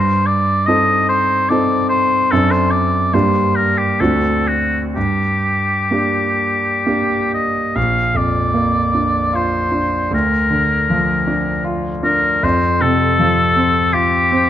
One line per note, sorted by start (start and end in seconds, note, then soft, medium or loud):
0.00 0.65 G2 medium
0.00 0.28 C5 medium
0.26 0.67 D5 medium
0.66 1.45 C4 soft
0.66 1.45 D#4 soft
0.66 1.45 A4 soft
0.66 1.07 D#5 medium
1.09 1.51 C5 medium
1.49 2.27 C4 soft
1.49 2.28 D#4 soft
1.49 2.28 A4 soft
1.49 1.88 D5 medium
1.89 2.33 C5 medium
2.31 3.12 F#2 medium
2.31 3.10 C4 soft
2.31 3.10 D4 soft
2.31 2.53 A4 medium
2.31 3.11 A4 soft
2.51 2.73 C5 medium
2.71 3.15 D5 medium
3.14 3.97 G2 soft
3.14 3.96 A#3 soft
3.14 3.96 D4 soft
3.14 3.96 G4 soft
3.14 3.57 C5 medium
3.56 3.79 A#4 medium
3.78 4.01 G4 medium
4.00 4.93 D2 soft
4.00 4.92 C4 soft
4.00 4.92 D4 soft
4.00 4.92 F#4 soft
4.00 4.49 A4 medium
4.48 4.81 F#4 medium
4.95 5.89 G2 soft
4.95 7.30 G4 medium
5.91 6.82 A#3 soft
5.91 6.82 D4 soft
5.91 6.83 G4 soft
6.86 7.73 A#3 soft
6.86 7.73 D4 soft
6.86 7.73 G4 soft
7.34 7.78 D#5 soft
7.76 10.09 A#1 soft
7.76 8.18 F5 medium
8.15 8.79 F2 soft
8.15 9.37 D5 medium
8.54 9.19 A#3 soft
8.94 9.58 D4 soft
9.33 9.96 F4 soft
9.33 10.13 C5 medium
9.72 10.12 D4 soft
10.11 12.39 D2 soft
10.11 11.64 A#4 medium
10.51 11.12 D3 soft
10.90 11.51 F3 soft
11.27 11.89 D4 soft
11.64 12.27 F4 soft
12.03 12.43 D4 soft
12.03 12.45 A#4 medium
12.43 14.50 F2 medium
12.43 12.83 C5 medium
12.81 13.41 C3 soft
12.81 13.95 A4 medium
13.19 13.79 F3 soft
13.56 14.16 C4 soft
13.93 14.50 F4 soft
13.93 14.50 G4 medium
14.32 14.50 C4 soft